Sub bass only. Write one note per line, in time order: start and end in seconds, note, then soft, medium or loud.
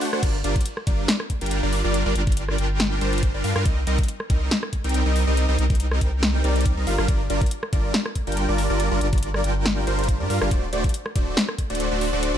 0.23 0.42 G1 loud
0.44 0.56 G1 loud
0.87 1.05 G1 loud
1.42 1.61 G1 loud
1.63 1.82 G1 loud
1.84 2.03 G1 loud
2.06 2.14 G1 loud
2.16 2.56 G1 loud
2.58 2.99 G1 loud
3.01 3.32 G1 loud
3.34 3.42 G1 loud
3.44 3.53 G2 loud
3.56 3.67 G2 medium
3.66 3.85 C2 medium
3.87 3.98 C2 loud
4.30 4.48 C2 loud
4.84 5.03 C2 loud
5.06 5.25 C2 loud
5.27 5.46 C2 loud
5.48 5.56 C2 loud
5.58 5.99 C2 loud
6.01 6.42 C2 loud
6.44 6.75 C2 loud
6.77 6.85 C2 loud
6.87 6.96 G1 loud
6.99 7.06 G1 loud
7.08 7.28 G1 loud
7.30 7.41 G1 loud
7.73 7.91 G1 loud
8.27 8.46 G1 loud
8.48 8.68 G1 loud
8.70 8.89 G1 medium
8.91 8.99 G1 loud
9.01 9.42 G1 loud
9.44 9.85 G1 loud
9.87 10.22 G1 loud
10.20 10.28 G2 loud
10.30 10.39 G2 loud
10.42 10.49 G1 loud
10.51 10.71 D1 loud
10.73 10.84 D1 loud
11.16 11.34 D1 loud
11.70 11.89 D1 loud
11.92 12.11 D1 loud
12.13 12.32 D1 loud
12.34 12.38 D1 loud